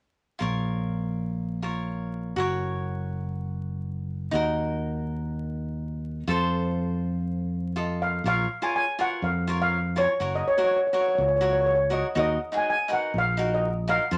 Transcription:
0.39 A#1 F4 A#4 C#5
1.62 F4 A#4 C#5
2.36 F#1 F#4 A#4 C#5
4.31 D#2 D#4 F#4 A#4
6.28 F2 F4 A4 C5
7.76 F4 A4 D#5
8.02 F5
8.24 A#1 F4 A#4 C#5 F5
8.62 F4 A#4 C#5 G#5
8.76 G#5
8.99 F4 A#4 C#5 F#5
9.22 F2 F5
9.47 F4 A#4 C#5
9.62 F5
9.96 F4 A#4 C#5
10.20 F#1 F#4 A#4 C#5
10.35 D#5
10.48 C#5
10.57 F#4 A#4 C#5
10.64 C#5
10.71 C#5
10.76 C#5
10.87 C#5
10.93 F#4 A#4 C#5
11.01 C#5
11.08 C#5
11.15 C#2 C#5
11.21 C#5
11.28 C#5
11.36 C#5
11.41 F#4 A#4 C#5
11.53 C#5
11.61 C#5
11.66 C#5
11.75 C#5
11.90 F#4 A#4 C#5 D#5
12.15 D#2 D#4 F#4 A#4
12.19 D#5
12.52 D#4 F#4 G#4
12.57 G#5
12.70 G#5
12.88 D#4 F#4 A#4
12.93 F#5
13.14 A#1
13.18 F5
13.37 D#4 F#4 A#4
13.54 D#5
13.88 D#4 F#4 A#4 F5
14.11 F2 F4 A4 C5

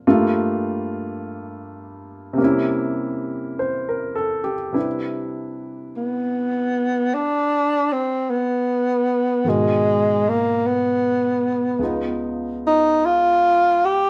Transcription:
0.07 G2 G3 A3 A#3 F4
2.33 C3 G3
2.38 A#3 C#4
2.44 E4
3.59 C5
3.89 A#4
4.15 A4
4.44 G4
4.72 C3 G3 D4 E4 B4
5.97 B3
7.14 D4
7.93 C4
8.30 B3
9.44 G#2 B2 D#3 F#4 A#4
9.49 G#3
10.29 A#3
10.67 B3
11.79 C#2 C#3 B3
11.83 D#4 F4
12.67 D#4
13.06 F4
13.85 G4

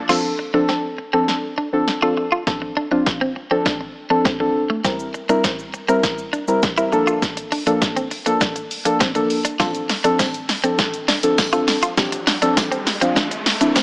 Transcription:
0.09 F3 C4 D4 F4 A4, snare, crash
0.39 muted clean electric guitar stroke
0.54 F3 C4 D4 A4
0.69 C4, snare
0.98 muted clean electric guitar stroke
1.13 F3 C4 D4 A4
1.28 snare
1.58 D4
1.73 F3 C4 D4 A4
1.88 snare
2.02 F3 C4 D4 F4 A4
2.17 muted clean electric guitar stroke
2.32 F4
2.47 F3 C4 D4 A4, kick, snare
2.62 muted clean electric guitar stroke
2.77 D4
2.91 F3 C4 D4 F4
3.06 kick, snare
3.21 C4
3.36 muted clean electric guitar stroke
3.51 F3 C4 D4 A4
3.66 D4, kick, snare
3.81 muted clean electric guitar stroke
4.10 F3 C4 D4 A4
4.25 C4, kick, snare
4.40 F3 C4 D4 A4, muted clean electric guitar stroke
4.70 A3
4.84 G3 C4 E4 A#4, kick, snare, shaker
4.99 shaker
5.14 muted clean electric guitar stroke, shaker
5.29 G3 C4 D4 E4 A#4, shaker
5.44 C4, kick, snare, shaker
5.59 shaker
5.74 muted clean electric guitar stroke, shaker
5.88 G3 C4 E4 A#4, shaker
6.03 kick, snare, shaker
6.18 shaker
6.33 D4, shaker
6.48 G3 C4 E4 A#4, shaker
6.63 kick, snare, shaker
6.77 G3 C4 E4 A#4, shaker
6.92 F3 A#3 D4 A4, muted clean electric guitar stroke, shaker
7.07 F4, shaker
7.22 kick, snare, shaker
7.37 muted clean electric guitar stroke, closed hi-hat, shaker
7.52 D4, open hi-hat, shaker
7.67 F3 A#3 D4 A4, closed hi-hat, shaker
7.82 kick, snare, shaker
7.96 C4, closed hi-hat, shaker
8.11 muted clean electric guitar stroke, open hi-hat, shaker
8.26 F3 A#3 D4 A4, closed hi-hat, shaker
8.41 D4, kick, snare, shaker
8.56 muted clean electric guitar stroke, closed hi-hat, shaker
8.71 open hi-hat, shaker
8.85 F3 A#3 D4 A4, closed hi-hat, shaker
9.00 C4, kick, snare, shaker
9.15 F3 A#3 D4 A4, muted clean electric guitar stroke, closed hi-hat, shaker
9.30 open hi-hat, shaker
9.45 D4, closed hi-hat, shaker
9.60 F3 C4 D4 F4 A4, kick, snare, tambourine, riser, shaker
9.75 closed hi-hat, shaker
9.89 muted clean electric guitar stroke, snare, open hi-hat, tambourine, shaker
10.04 F3 C4 D4 A4, closed hi-hat, shaker
10.19 C4, kick, snare, tambourine, shaker
10.34 closed hi-hat, shaker
10.49 muted clean electric guitar stroke, snare, open hi-hat, tambourine, shaker
10.64 F3 C4 D4 A4, closed hi-hat, shaker
10.79 kick, snare, tambourine, shaker
10.94 closed hi-hat, shaker
11.08 D4, snare, open hi-hat, tambourine, shaker
11.23 F3 C4 D4 A4, closed hi-hat, shaker
11.38 kick, snare, tambourine, shaker
11.53 F3 C4 D4 F4 A4, closed hi-hat, shaker
11.68 muted clean electric guitar stroke, snare, open hi-hat, tambourine, shaker
11.83 F4, closed hi-hat, shaker
11.97 F3 C4 D4 G4, kick, snare, tambourine, shaker
12.12 muted clean electric guitar stroke, closed hi-hat, shaker
12.27 D4, snare, open hi-hat, shaker
12.42 F3 C4 D4 A4, closed hi-hat, shaker
12.57 kick, snare, tambourine, shaker
12.72 C4, closed hi-hat, shaker
12.87 muted clean electric guitar stroke, snare, open hi-hat, tambourine, shaker
13.01 F3 C4 D4 F4, closed hi-hat, shaker
13.16 D4, kick, snare, tambourine, shaker
13.31 muted clean electric guitar stroke, closed hi-hat, shaker
13.46 snare, open hi-hat, tambourine, shaker
13.61 F3 C4 D4 E4, closed hi-hat, shaker
13.76 C4, kick, snare, tambourine, shaker

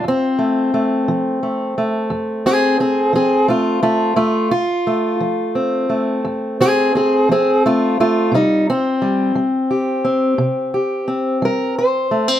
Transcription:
0.04 F2
0.08 C4
0.39 A3
0.74 A3
1.08 F3
1.43 A3
1.78 A3
2.10 F2
2.46 C4 G#4
2.80 C4 G#4
3.13 F3 C4 G#4
3.48 A3 F4
3.83 A3 F4
4.16 F2 A3 F4
4.51 F4
4.87 A3
5.20 F3
5.55 C4
5.89 A3
6.25 F2
6.61 C4 G#4
6.95 C4 G#4
7.29 F3 C4 G#4
7.66 A3 F4
8.00 A3 F4
8.32 C3 G3 D#4
8.70 C4
9.02 G3
9.35 G3
9.71 G4
10.04 C4
10.38 C3
10.74 G4
11.08 C4
11.42 G3 A#4
11.78 C5
12.11 A3
12.28 C4

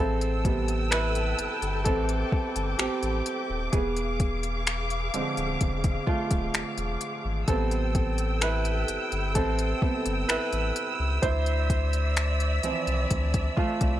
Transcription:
Already playing: G#4 A4 E5 G5
0.00 A1 C4 A5 E6
0.21 closed hi-hat
0.45 C3 G3 B3, kick, closed hi-hat
0.68 closed hi-hat
0.91 E4 B4, finger snap, closed hi-hat
1.15 closed hi-hat
1.39 G1, closed hi-hat
1.62 G1, closed hi-hat
1.85 A1 C4 A4 D6, kick, closed hi-hat
2.09 closed hi-hat
2.32 kick
2.56 G1, closed hi-hat
2.78 A1 C4 G4, finger snap, closed hi-hat
3.03 A1, closed hi-hat
3.26 closed hi-hat
3.50 D#1
3.72 E1 B3 G#4 F5, kick, closed hi-hat
3.96 closed hi-hat
4.20 kick, closed hi-hat
4.43 closed hi-hat
4.67 finger snap, closed hi-hat
4.90 closed hi-hat
5.14 D1 D3 F3 G#3 C4, closed hi-hat
5.37 D1, closed hi-hat
5.61 E1, kick, closed hi-hat
5.84 kick, closed hi-hat
6.07 A3 F4, kick
6.31 D1, kick, closed hi-hat
6.54 E1, finger snap, closed hi-hat
6.78 E1, closed hi-hat
7.01 closed hi-hat
7.25 G#1
7.48 A1 C3 G3 B3 C4 A4 G5 E6, kick, closed hi-hat
7.71 closed hi-hat
7.95 kick, closed hi-hat
8.18 closed hi-hat
8.41 E4 B4, finger snap, closed hi-hat
8.65 closed hi-hat
8.88 G1, closed hi-hat
9.12 G1, closed hi-hat
9.35 A1 C4 A4, kick, closed hi-hat
9.59 closed hi-hat
9.82 C3 G3 B3, kick
10.06 G1, closed hi-hat
10.29 A1 E4 B4, finger snap, closed hi-hat
10.53 A1, closed hi-hat
10.76 closed hi-hat
10.99 C#2
11.22 D2 E4 C5 D5 E5, kick, closed hi-hat
11.46 closed hi-hat
11.70 kick, closed hi-hat
11.93 closed hi-hat
12.17 finger snap, closed hi-hat
12.40 closed hi-hat
12.63 C2 E3 F3 C4, closed hi-hat
12.87 C2, closed hi-hat
13.11 D2, kick, closed hi-hat
13.34 kick, closed hi-hat
13.57 A3 F4, kick
13.81 C2, kick, closed hi-hat

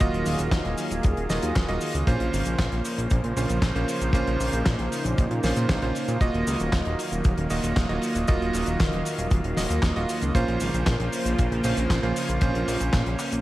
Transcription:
Already playing: D#3 F#3 A#3 F5
0.00 D#1 A#3 F4 F#4 G#4 D#5, kick, closed hi-hat, cabasa
0.13 D#1, closed hi-hat
0.26 D#1, open hi-hat, cabasa
0.39 D#1, closed hi-hat, cabasa
0.52 D#1, kick, snare, clap, closed hi-hat, cabasa
0.65 D#1, closed hi-hat
0.78 open hi-hat, cabasa
0.91 D#1, closed hi-hat, cabasa
1.03 D#1, kick, closed hi-hat, cabasa
1.17 D#1, closed hi-hat
1.29 D#1 A#3 F4 F#4 D#5, snare, open hi-hat, cabasa
1.42 D#2, closed hi-hat, cabasa
1.56 D#1, kick, snare, clap, closed hi-hat, cabasa
1.68 D#1 A#3 F4 F#4 D#5, closed hi-hat
1.81 open hi-hat, cabasa
1.94 C#2, closed hi-hat, cabasa
2.07 A#1 C#3 F3 A#3 C#4 F4 C5, kick, closed hi-hat, cabasa
2.20 A#1, closed hi-hat
2.33 G#1, open hi-hat, cabasa
2.45 A#1, closed hi-hat, cabasa
2.59 A#1, kick, snare, clap, closed hi-hat, cabasa
2.72 A#1, closed hi-hat
2.85 open hi-hat, cabasa
2.98 A#1, closed hi-hat, cabasa
3.10 A#1, kick, closed hi-hat, cabasa
3.24 A#1, closed hi-hat
3.37 A#1 A#3 C#4 F4 C5, open hi-hat, cabasa
3.49 A#1, closed hi-hat, cabasa
3.62 A#1, kick, snare, clap, closed hi-hat, cabasa
3.75 A#1 A#3 C#4 F4 C5, closed hi-hat
3.88 open hi-hat, cabasa
4.01 A#1, closed hi-hat, cabasa
4.13 A#1 A#3 C#4 D#4 F4 C5, kick, closed hi-hat, cabasa
4.27 A#1, closed hi-hat
4.40 A#1, open hi-hat, cabasa
4.53 A#1, closed hi-hat, cabasa
4.66 A#1, kick, snare, clap, closed hi-hat, cabasa
4.79 A#1, closed hi-hat
4.92 open hi-hat, cabasa
5.05 A#1, closed hi-hat, cabasa
5.18 A#1, kick, closed hi-hat, cabasa
5.31 A#2, closed hi-hat
5.43 A#1 A#3 C#4 F4 C5, snare, open hi-hat, cabasa
5.56 A#2, closed hi-hat, cabasa
5.69 A#1, kick, snare, clap, closed hi-hat, cabasa
5.82 A#1 A#3 C#4 F4 C5, closed hi-hat
5.95 open hi-hat, cabasa
6.08 A#2, closed hi-hat, cabasa
6.21 D#1 D#3 F#3 A#3 F4 F#4 D#5 F5, kick, closed hi-hat, cabasa
6.34 D#1, closed hi-hat
6.47 C#2, open hi-hat, cabasa
6.60 D#1, closed hi-hat, cabasa
6.72 D#1, kick, snare, clap, closed hi-hat, cabasa
6.85 D#1, closed hi-hat
6.99 open hi-hat, cabasa
7.11 D#1, closed hi-hat, cabasa
7.24 D#1, kick, closed hi-hat, cabasa
7.38 D#1, closed hi-hat
7.50 D#1 A#3 F4 F#4 D#5, open hi-hat, cabasa
7.63 D#1, closed hi-hat, cabasa
7.76 D#1, kick, snare, clap, closed hi-hat, cabasa
7.89 D#1 A#3 F4 F#4 D#5, closed hi-hat
8.02 open hi-hat, cabasa
8.15 D#1, closed hi-hat, cabasa
8.28 D#1 A#3 F4 F#4 D#5, kick, closed hi-hat, cabasa
8.41 D#1, closed hi-hat
8.53 D#1, open hi-hat, cabasa
8.66 D#1, closed hi-hat, cabasa
8.80 D#1, kick, snare, clap, closed hi-hat, cabasa
8.93 D#1, closed hi-hat
9.05 open hi-hat, cabasa
9.19 D#1, closed hi-hat, cabasa
9.31 D#1, kick, closed hi-hat, cabasa
9.44 D#1, closed hi-hat
9.57 D#1 A#3 F4 F#4 D#5, snare, open hi-hat, cabasa
9.70 D#2, closed hi-hat, cabasa
9.82 D#1, kick, snare, clap, closed hi-hat, cabasa
9.96 D#1 A#3 F4 F#4 D#5, closed hi-hat
10.09 open hi-hat, cabasa
10.22 C#2, closed hi-hat, cabasa
10.35 A#1 C#3 F3 A#3 C#4 F4 C5, kick, closed hi-hat, cabasa
10.48 A#1, closed hi-hat
10.60 G#1, open hi-hat, cabasa
10.74 A#1, closed hi-hat, cabasa
10.86 A#1, kick, snare, clap, closed hi-hat, cabasa
11.00 A#1, closed hi-hat
11.12 open hi-hat, cabasa
11.26 A#1, closed hi-hat, cabasa
11.39 A#1, kick, closed hi-hat, cabasa
11.51 A#1, closed hi-hat
11.64 A#1 A#3 C#4 F4 C5, open hi-hat, cabasa
11.77 A#1, closed hi-hat, cabasa
11.90 A#1, kick, snare, clap, closed hi-hat, cabasa
12.03 A#1 A#3 C#4 F4 C5, closed hi-hat
12.16 open hi-hat, cabasa
12.29 A#1, closed hi-hat, cabasa
12.41 A#1 A#3 C#4 F4 C5, kick, closed hi-hat, cabasa
12.55 A#1, closed hi-hat
12.68 A#1, open hi-hat, cabasa
12.80 A#1, closed hi-hat, cabasa
12.93 A#1, kick, snare, clap, closed hi-hat, cabasa
13.06 A#1, closed hi-hat
13.19 clap, open hi-hat, cabasa
13.32 A#1, closed hi-hat, cabasa

